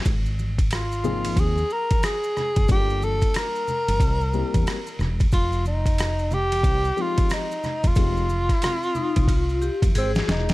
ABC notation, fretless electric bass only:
X:1
M:4/4
L:1/16
Q:"Swing 16ths" 1/4=91
K:Fm
V:1 name="Fretless electric bass" clef=bass
A,,,8 E,,2 z4 z _G,,, | G,,,4 z3 G,,, C,,3 =E,, z2 =E,,,2 | F,,,8 C,,2 z4 z =E,,, | F,,,4 z3 C,,4 F,,, A,,,2 =E,,,2 |]